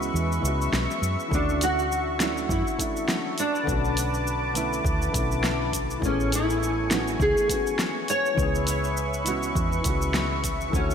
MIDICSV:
0, 0, Header, 1, 6, 480
1, 0, Start_track
1, 0, Tempo, 588235
1, 1078, Time_signature, 4, 2, 24, 8
1, 8932, End_track
2, 0, Start_track
2, 0, Title_t, "Analog synth pad"
2, 0, Program_c, 0, 89
2, 0, Note_on_c, 0, 71, 71
2, 0, Note_on_c, 0, 76, 67
2, 0, Note_on_c, 0, 85, 81
2, 1058, Note_off_c, 0, 71, 0
2, 1067, Note_on_c, 0, 66, 72
2, 2723, Note_off_c, 0, 76, 0
2, 2725, Note_off_c, 0, 85, 0
2, 2735, Note_off_c, 0, 66, 0
2, 2752, Note_on_c, 0, 71, 74
2, 2754, Note_on_c, 0, 81, 63
2, 2755, Note_on_c, 0, 86, 82
2, 4893, Note_off_c, 0, 71, 0
2, 4894, Note_off_c, 0, 81, 0
2, 4895, Note_off_c, 0, 86, 0
2, 4912, Note_on_c, 0, 57, 74
2, 4912, Note_on_c, 0, 80, 70
2, 4912, Note_on_c, 0, 85, 86
2, 6815, Note_off_c, 0, 57, 0
2, 6816, Note_off_c, 0, 80, 0
2, 6839, Note_on_c, 0, 76, 68
2, 6843, Note_on_c, 0, 71, 75
2, 8741, Note_off_c, 0, 71, 0
2, 8752, Note_on_c, 0, 66, 76
2, 8932, Note_off_c, 0, 66, 0
2, 8932, Note_off_c, 0, 76, 0
2, 8932, Note_off_c, 0, 85, 0
2, 8932, End_track
3, 0, Start_track
3, 0, Title_t, "Nylon-string guitar"
3, 0, Program_c, 1, 24
3, 1097, Note_on_c, 1, 62, 86
3, 1333, Note_on_c, 1, 66, 99
3, 1334, Note_off_c, 1, 62, 0
3, 2048, Note_on_c, 1, 64, 78
3, 2067, Note_off_c, 1, 66, 0
3, 2490, Note_off_c, 1, 64, 0
3, 2771, Note_on_c, 1, 62, 109
3, 3211, Note_off_c, 1, 62, 0
3, 4939, Note_on_c, 1, 61, 76
3, 5175, Note_off_c, 1, 61, 0
3, 5181, Note_on_c, 1, 64, 87
3, 5703, Note_off_c, 1, 64, 0
3, 5703, Note_on_c, 1, 62, 87
3, 5892, Note_on_c, 1, 68, 90
3, 5911, Note_off_c, 1, 62, 0
3, 6332, Note_off_c, 1, 68, 0
3, 6609, Note_on_c, 1, 73, 106
3, 7051, Note_off_c, 1, 73, 0
3, 8776, Note_on_c, 1, 61, 86
3, 8932, Note_off_c, 1, 61, 0
3, 8932, End_track
4, 0, Start_track
4, 0, Title_t, "Grand piano"
4, 0, Program_c, 2, 0
4, 0, Control_c, 2, 64, 127
4, 0, Note_on_c, 2, 52, 78
4, 0, Note_on_c, 2, 56, 75
4, 0, Note_on_c, 2, 59, 71
4, 0, Note_on_c, 2, 61, 72
4, 0, Note_on_c, 2, 66, 88
4, 0, Note_on_c, 2, 68, 89
4, 312, Note_off_c, 2, 52, 0
4, 324, Note_on_c, 2, 52, 81
4, 328, Note_off_c, 2, 56, 0
4, 332, Note_off_c, 2, 59, 0
4, 337, Note_off_c, 2, 61, 0
4, 340, Note_off_c, 2, 66, 0
4, 341, Note_on_c, 2, 56, 73
4, 358, Note_on_c, 2, 59, 72
4, 374, Note_on_c, 2, 61, 71
4, 388, Note_on_c, 2, 66, 86
4, 1029, Note_off_c, 2, 52, 0
4, 1042, Note_on_c, 2, 52, 72
4, 1044, Note_off_c, 2, 56, 0
4, 1052, Note_off_c, 2, 59, 0
4, 1059, Note_on_c, 2, 57, 67
4, 1060, Note_off_c, 2, 61, 0
4, 1067, Note_off_c, 2, 66, 0
4, 1073, Note_on_c, 2, 61, 69
4, 1090, Control_c, 2, 64, 0
4, 1090, Note_on_c, 2, 62, 69
4, 1092, Note_off_c, 2, 68, 0
4, 1105, Note_on_c, 2, 66, 79
4, 1231, Control_c, 2, 64, 127
4, 1754, Note_off_c, 2, 52, 0
4, 1763, Note_off_c, 2, 57, 0
4, 1770, Note_off_c, 2, 61, 0
4, 1778, Note_off_c, 2, 62, 0
4, 1782, Note_on_c, 2, 52, 74
4, 1786, Note_off_c, 2, 66, 0
4, 1789, Note_on_c, 2, 57, 74
4, 1797, Note_on_c, 2, 61, 69
4, 1805, Note_on_c, 2, 62, 72
4, 1815, Note_on_c, 2, 64, 93
4, 2244, Note_off_c, 2, 52, 0
4, 2248, Note_off_c, 2, 57, 0
4, 2252, Note_off_c, 2, 61, 0
4, 2256, Note_off_c, 2, 62, 0
4, 2260, Note_off_c, 2, 64, 0
4, 2262, Note_on_c, 2, 52, 79
4, 2271, Note_on_c, 2, 57, 75
4, 2278, Note_on_c, 2, 61, 71
4, 2286, Note_on_c, 2, 62, 73
4, 2293, Note_on_c, 2, 64, 92
4, 2737, Note_off_c, 2, 52, 0
4, 2741, Note_off_c, 2, 57, 0
4, 2745, Note_off_c, 2, 61, 0
4, 2749, Note_off_c, 2, 62, 0
4, 2753, Note_off_c, 2, 64, 0
4, 2769, Control_c, 2, 64, 0
4, 2904, Control_c, 2, 64, 127
4, 2962, Note_on_c, 2, 50, 79
4, 2982, Note_on_c, 2, 57, 69
4, 2995, Note_on_c, 2, 59, 65
4, 3013, Note_on_c, 2, 61, 68
4, 3029, Note_on_c, 2, 66, 84
4, 3674, Note_off_c, 2, 50, 0
4, 3684, Note_off_c, 2, 57, 0
4, 3691, Note_off_c, 2, 59, 0
4, 3699, Note_on_c, 2, 50, 77
4, 3700, Note_off_c, 2, 61, 0
4, 3707, Note_on_c, 2, 57, 75
4, 3708, Note_off_c, 2, 66, 0
4, 3715, Note_on_c, 2, 59, 77
4, 3723, Note_on_c, 2, 61, 73
4, 3731, Note_on_c, 2, 64, 90
4, 4151, Note_off_c, 2, 50, 0
4, 4163, Note_on_c, 2, 50, 84
4, 4166, Note_off_c, 2, 57, 0
4, 4171, Note_off_c, 2, 59, 0
4, 4174, Note_off_c, 2, 61, 0
4, 4178, Note_off_c, 2, 64, 0
4, 4181, Note_on_c, 2, 57, 74
4, 4197, Note_on_c, 2, 59, 76
4, 4212, Note_on_c, 2, 61, 72
4, 4230, Note_on_c, 2, 64, 90
4, 4875, Note_off_c, 2, 50, 0
4, 4884, Note_off_c, 2, 57, 0
4, 4885, Note_on_c, 2, 52, 78
4, 4892, Note_off_c, 2, 59, 0
4, 4899, Note_off_c, 2, 61, 0
4, 4899, Note_on_c, 2, 57, 72
4, 4908, Note_off_c, 2, 64, 0
4, 4918, Note_on_c, 2, 59, 70
4, 4926, Control_c, 2, 64, 0
4, 4932, Note_on_c, 2, 61, 71
4, 4949, Note_on_c, 2, 68, 84
4, 5086, Control_c, 2, 64, 127
4, 5596, Note_off_c, 2, 52, 0
4, 5603, Note_off_c, 2, 57, 0
4, 5612, Note_off_c, 2, 59, 0
4, 5619, Note_off_c, 2, 61, 0
4, 5621, Note_on_c, 2, 52, 84
4, 5628, Note_off_c, 2, 68, 0
4, 5630, Note_on_c, 2, 57, 75
4, 5638, Note_on_c, 2, 59, 74
4, 5645, Note_on_c, 2, 61, 76
4, 5655, Note_on_c, 2, 66, 92
4, 6070, Note_off_c, 2, 52, 0
4, 6082, Note_on_c, 2, 52, 81
4, 6087, Note_off_c, 2, 57, 0
4, 6092, Note_off_c, 2, 59, 0
4, 6096, Note_off_c, 2, 61, 0
4, 6099, Note_on_c, 2, 57, 76
4, 6101, Note_off_c, 2, 66, 0
4, 6115, Note_on_c, 2, 59, 73
4, 6130, Note_on_c, 2, 61, 77
4, 6148, Note_on_c, 2, 66, 90
4, 6793, Note_off_c, 2, 52, 0
4, 6803, Note_off_c, 2, 57, 0
4, 6805, Note_on_c, 2, 52, 77
4, 6811, Note_off_c, 2, 59, 0
4, 6818, Note_off_c, 2, 61, 0
4, 6821, Note_on_c, 2, 56, 71
4, 6827, Note_off_c, 2, 66, 0
4, 6837, Note_on_c, 2, 59, 70
4, 6847, Control_c, 2, 64, 0
4, 6855, Note_on_c, 2, 61, 71
4, 6871, Note_on_c, 2, 68, 90
4, 6976, Control_c, 2, 64, 127
4, 7516, Note_off_c, 2, 52, 0
4, 7524, Note_off_c, 2, 56, 0
4, 7532, Note_off_c, 2, 59, 0
4, 7541, Note_off_c, 2, 61, 0
4, 7544, Note_on_c, 2, 52, 81
4, 7548, Note_on_c, 2, 56, 74
4, 7549, Note_off_c, 2, 68, 0
4, 7559, Note_on_c, 2, 59, 74
4, 7566, Note_on_c, 2, 61, 75
4, 7573, Note_on_c, 2, 66, 93
4, 7997, Note_off_c, 2, 52, 0
4, 8007, Note_off_c, 2, 56, 0
4, 8009, Note_on_c, 2, 52, 79
4, 8013, Note_off_c, 2, 59, 0
4, 8016, Note_off_c, 2, 61, 0
4, 8020, Note_off_c, 2, 66, 0
4, 8024, Note_on_c, 2, 56, 73
4, 8039, Note_on_c, 2, 59, 74
4, 8057, Note_on_c, 2, 61, 73
4, 8072, Note_on_c, 2, 66, 88
4, 8714, Note_off_c, 2, 52, 0
4, 8725, Note_off_c, 2, 56, 0
4, 8726, Note_on_c, 2, 52, 74
4, 8733, Note_off_c, 2, 59, 0
4, 8742, Note_off_c, 2, 61, 0
4, 8742, Note_on_c, 2, 57, 70
4, 8749, Note_off_c, 2, 66, 0
4, 8758, Note_on_c, 2, 61, 69
4, 8768, Control_c, 2, 64, 0
4, 8775, Note_on_c, 2, 50, 72
4, 8792, Note_on_c, 2, 66, 81
4, 8930, Control_c, 2, 64, 127
4, 8932, Note_off_c, 2, 50, 0
4, 8932, Note_off_c, 2, 52, 0
4, 8932, Note_off_c, 2, 57, 0
4, 8932, Note_off_c, 2, 61, 0
4, 8932, Note_off_c, 2, 66, 0
4, 8932, End_track
5, 0, Start_track
5, 0, Title_t, "Fretless electric bass"
5, 0, Program_c, 3, 35
5, 115, Note_on_c, 3, 40, 75
5, 312, Note_off_c, 3, 40, 0
5, 350, Note_on_c, 3, 37, 78
5, 586, Note_off_c, 3, 37, 0
5, 591, Note_on_c, 3, 35, 81
5, 700, Note_off_c, 3, 35, 0
5, 831, Note_on_c, 3, 42, 88
5, 940, Note_off_c, 3, 42, 0
5, 1072, Note_on_c, 3, 38, 83
5, 2000, Note_off_c, 3, 38, 0
5, 2033, Note_on_c, 3, 42, 85
5, 2141, Note_off_c, 3, 42, 0
5, 2997, Note_on_c, 3, 35, 86
5, 3922, Note_off_c, 3, 35, 0
5, 3955, Note_on_c, 3, 38, 70
5, 4152, Note_off_c, 3, 38, 0
5, 4193, Note_on_c, 3, 35, 77
5, 4880, Note_off_c, 3, 35, 0
5, 4912, Note_on_c, 3, 33, 85
5, 5839, Note_off_c, 3, 33, 0
5, 5872, Note_on_c, 3, 37, 89
5, 5981, Note_off_c, 3, 37, 0
5, 6833, Note_on_c, 3, 37, 89
5, 7760, Note_off_c, 3, 37, 0
5, 7797, Note_on_c, 3, 40, 68
5, 7993, Note_off_c, 3, 40, 0
5, 8037, Note_on_c, 3, 37, 76
5, 8722, Note_off_c, 3, 37, 0
5, 8756, Note_on_c, 3, 38, 89
5, 8932, Note_off_c, 3, 38, 0
5, 8932, End_track
6, 0, Start_track
6, 0, Title_t, "Drums"
6, 19, Note_on_c, 9, 69, 28
6, 101, Note_off_c, 9, 69, 0
6, 129, Note_on_c, 9, 69, 43
6, 211, Note_off_c, 9, 69, 0
6, 263, Note_on_c, 9, 69, 28
6, 344, Note_off_c, 9, 69, 0
6, 366, Note_on_c, 9, 69, 66
6, 448, Note_off_c, 9, 69, 0
6, 502, Note_on_c, 9, 69, 30
6, 584, Note_off_c, 9, 69, 0
6, 599, Note_on_c, 9, 38, 72
6, 606, Note_on_c, 9, 69, 41
6, 681, Note_off_c, 9, 38, 0
6, 688, Note_off_c, 9, 69, 0
6, 741, Note_on_c, 9, 69, 27
6, 822, Note_off_c, 9, 69, 0
6, 841, Note_on_c, 9, 69, 64
6, 923, Note_off_c, 9, 69, 0
6, 977, Note_on_c, 9, 69, 28
6, 1058, Note_off_c, 9, 69, 0
6, 1073, Note_on_c, 9, 36, 103
6, 1086, Note_on_c, 9, 69, 39
6, 1155, Note_off_c, 9, 36, 0
6, 1167, Note_off_c, 9, 69, 0
6, 1217, Note_on_c, 9, 69, 27
6, 1299, Note_off_c, 9, 69, 0
6, 1315, Note_on_c, 9, 46, 90
6, 1323, Note_on_c, 9, 69, 72
6, 1397, Note_off_c, 9, 46, 0
6, 1404, Note_off_c, 9, 69, 0
6, 1461, Note_on_c, 9, 69, 28
6, 1543, Note_off_c, 9, 69, 0
6, 1566, Note_on_c, 9, 69, 43
6, 1647, Note_off_c, 9, 69, 0
6, 1796, Note_on_c, 9, 38, 73
6, 1796, Note_on_c, 9, 46, 82
6, 1803, Note_on_c, 9, 69, 71
6, 1877, Note_off_c, 9, 38, 0
6, 1877, Note_off_c, 9, 46, 0
6, 1885, Note_off_c, 9, 69, 0
6, 1938, Note_on_c, 9, 69, 29
6, 2019, Note_off_c, 9, 69, 0
6, 2034, Note_on_c, 9, 36, 113
6, 2043, Note_on_c, 9, 69, 40
6, 2116, Note_off_c, 9, 36, 0
6, 2125, Note_off_c, 9, 69, 0
6, 2181, Note_on_c, 9, 69, 29
6, 2263, Note_off_c, 9, 69, 0
6, 2275, Note_on_c, 9, 36, 57
6, 2281, Note_on_c, 9, 46, 81
6, 2288, Note_on_c, 9, 69, 71
6, 2356, Note_off_c, 9, 36, 0
6, 2362, Note_off_c, 9, 46, 0
6, 2369, Note_off_c, 9, 69, 0
6, 2420, Note_on_c, 9, 69, 31
6, 2501, Note_off_c, 9, 69, 0
6, 2517, Note_on_c, 9, 38, 73
6, 2525, Note_on_c, 9, 69, 42
6, 2599, Note_off_c, 9, 38, 0
6, 2606, Note_off_c, 9, 69, 0
6, 2755, Note_on_c, 9, 46, 81
6, 2762, Note_on_c, 9, 69, 67
6, 2837, Note_off_c, 9, 46, 0
6, 2844, Note_off_c, 9, 69, 0
6, 2899, Note_on_c, 9, 69, 31
6, 2980, Note_off_c, 9, 69, 0
6, 2996, Note_on_c, 9, 36, 114
6, 3007, Note_on_c, 9, 69, 44
6, 3078, Note_off_c, 9, 36, 0
6, 3089, Note_off_c, 9, 69, 0
6, 3139, Note_on_c, 9, 69, 29
6, 3220, Note_off_c, 9, 69, 0
6, 3238, Note_on_c, 9, 46, 85
6, 3246, Note_on_c, 9, 69, 79
6, 3320, Note_off_c, 9, 46, 0
6, 3327, Note_off_c, 9, 69, 0
6, 3380, Note_on_c, 9, 69, 29
6, 3461, Note_off_c, 9, 69, 0
6, 3485, Note_on_c, 9, 69, 43
6, 3567, Note_off_c, 9, 69, 0
6, 3715, Note_on_c, 9, 46, 82
6, 3723, Note_on_c, 9, 69, 74
6, 3797, Note_off_c, 9, 46, 0
6, 3804, Note_off_c, 9, 69, 0
6, 3860, Note_on_c, 9, 69, 30
6, 3941, Note_off_c, 9, 69, 0
6, 3954, Note_on_c, 9, 36, 114
6, 3964, Note_on_c, 9, 69, 44
6, 4036, Note_off_c, 9, 36, 0
6, 4046, Note_off_c, 9, 69, 0
6, 4095, Note_on_c, 9, 69, 29
6, 4177, Note_off_c, 9, 69, 0
6, 4194, Note_on_c, 9, 36, 96
6, 4197, Note_on_c, 9, 46, 81
6, 4204, Note_on_c, 9, 69, 66
6, 4276, Note_off_c, 9, 36, 0
6, 4279, Note_off_c, 9, 46, 0
6, 4286, Note_off_c, 9, 69, 0
6, 4338, Note_on_c, 9, 69, 31
6, 4420, Note_off_c, 9, 69, 0
6, 4436, Note_on_c, 9, 38, 75
6, 4443, Note_on_c, 9, 69, 43
6, 4518, Note_off_c, 9, 38, 0
6, 4525, Note_off_c, 9, 69, 0
6, 4672, Note_on_c, 9, 36, 58
6, 4678, Note_on_c, 9, 46, 79
6, 4686, Note_on_c, 9, 69, 72
6, 4754, Note_off_c, 9, 36, 0
6, 4760, Note_off_c, 9, 46, 0
6, 4767, Note_off_c, 9, 69, 0
6, 4818, Note_on_c, 9, 69, 30
6, 4899, Note_off_c, 9, 69, 0
6, 4912, Note_on_c, 9, 36, 122
6, 4926, Note_on_c, 9, 69, 43
6, 4994, Note_off_c, 9, 36, 0
6, 5008, Note_off_c, 9, 69, 0
6, 5061, Note_on_c, 9, 69, 30
6, 5142, Note_off_c, 9, 69, 0
6, 5160, Note_on_c, 9, 46, 86
6, 5167, Note_on_c, 9, 69, 78
6, 5241, Note_off_c, 9, 46, 0
6, 5249, Note_off_c, 9, 69, 0
6, 5303, Note_on_c, 9, 69, 31
6, 5385, Note_off_c, 9, 69, 0
6, 5410, Note_on_c, 9, 69, 46
6, 5492, Note_off_c, 9, 69, 0
6, 5637, Note_on_c, 9, 38, 70
6, 5637, Note_on_c, 9, 46, 81
6, 5644, Note_on_c, 9, 69, 74
6, 5719, Note_off_c, 9, 38, 0
6, 5719, Note_off_c, 9, 46, 0
6, 5726, Note_off_c, 9, 69, 0
6, 5774, Note_on_c, 9, 69, 32
6, 5855, Note_off_c, 9, 69, 0
6, 5873, Note_on_c, 9, 36, 110
6, 5880, Note_on_c, 9, 69, 42
6, 5955, Note_off_c, 9, 36, 0
6, 5962, Note_off_c, 9, 69, 0
6, 6016, Note_on_c, 9, 69, 33
6, 6097, Note_off_c, 9, 69, 0
6, 6114, Note_on_c, 9, 36, 56
6, 6116, Note_on_c, 9, 46, 79
6, 6123, Note_on_c, 9, 69, 71
6, 6196, Note_off_c, 9, 36, 0
6, 6198, Note_off_c, 9, 46, 0
6, 6205, Note_off_c, 9, 69, 0
6, 6257, Note_on_c, 9, 69, 36
6, 6339, Note_off_c, 9, 69, 0
6, 6355, Note_on_c, 9, 38, 68
6, 6362, Note_on_c, 9, 69, 42
6, 6437, Note_off_c, 9, 38, 0
6, 6444, Note_off_c, 9, 69, 0
6, 6595, Note_on_c, 9, 46, 77
6, 6603, Note_on_c, 9, 69, 70
6, 6677, Note_off_c, 9, 46, 0
6, 6684, Note_off_c, 9, 69, 0
6, 6737, Note_on_c, 9, 69, 32
6, 6819, Note_off_c, 9, 69, 0
6, 6835, Note_on_c, 9, 36, 113
6, 6843, Note_on_c, 9, 69, 44
6, 6917, Note_off_c, 9, 36, 0
6, 6925, Note_off_c, 9, 69, 0
6, 6977, Note_on_c, 9, 69, 29
6, 7058, Note_off_c, 9, 69, 0
6, 7073, Note_on_c, 9, 46, 78
6, 7080, Note_on_c, 9, 69, 80
6, 7154, Note_off_c, 9, 46, 0
6, 7162, Note_off_c, 9, 69, 0
6, 7215, Note_on_c, 9, 69, 28
6, 7296, Note_off_c, 9, 69, 0
6, 7319, Note_on_c, 9, 69, 47
6, 7401, Note_off_c, 9, 69, 0
6, 7454, Note_on_c, 9, 69, 32
6, 7535, Note_off_c, 9, 69, 0
6, 7554, Note_on_c, 9, 46, 80
6, 7561, Note_on_c, 9, 69, 75
6, 7636, Note_off_c, 9, 46, 0
6, 7643, Note_off_c, 9, 69, 0
6, 7692, Note_on_c, 9, 69, 32
6, 7774, Note_off_c, 9, 69, 0
6, 7797, Note_on_c, 9, 36, 116
6, 7802, Note_on_c, 9, 69, 43
6, 7878, Note_off_c, 9, 36, 0
6, 7884, Note_off_c, 9, 69, 0
6, 7935, Note_on_c, 9, 69, 32
6, 8016, Note_off_c, 9, 69, 0
6, 8032, Note_on_c, 9, 46, 77
6, 8037, Note_on_c, 9, 36, 92
6, 8039, Note_on_c, 9, 69, 75
6, 8113, Note_off_c, 9, 46, 0
6, 8118, Note_off_c, 9, 36, 0
6, 8121, Note_off_c, 9, 69, 0
6, 8174, Note_on_c, 9, 69, 35
6, 8256, Note_off_c, 9, 69, 0
6, 8275, Note_on_c, 9, 38, 68
6, 8282, Note_on_c, 9, 69, 43
6, 8357, Note_off_c, 9, 38, 0
6, 8364, Note_off_c, 9, 69, 0
6, 8516, Note_on_c, 9, 46, 69
6, 8518, Note_on_c, 9, 36, 60
6, 8524, Note_on_c, 9, 69, 69
6, 8598, Note_off_c, 9, 46, 0
6, 8599, Note_off_c, 9, 36, 0
6, 8605, Note_off_c, 9, 69, 0
6, 8657, Note_on_c, 9, 69, 33
6, 8739, Note_off_c, 9, 69, 0
6, 8758, Note_on_c, 9, 36, 107
6, 8766, Note_on_c, 9, 69, 43
6, 8840, Note_off_c, 9, 36, 0
6, 8847, Note_off_c, 9, 69, 0
6, 8898, Note_on_c, 9, 69, 30
6, 8932, Note_off_c, 9, 69, 0
6, 8932, End_track
0, 0, End_of_file